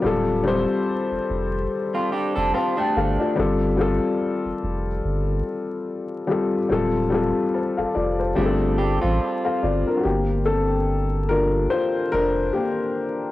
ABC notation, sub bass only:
X:1
M:4/4
L:1/16
Q:"Swing 16ths" 1/4=72
K:Gm
V:1 name="Sub bass" clef=bass
D,,,3 z2 F,,, F,,,2 z3 F,,, z2 G,,, z | G,,,3 z2 F,,, F,,,2 G,,,2 z6 | D,,,3 z2 F,,, F,,,2 G,,,3 A,,, z2 G,,, z | G,,,8 z2 F,,,2 z4 |]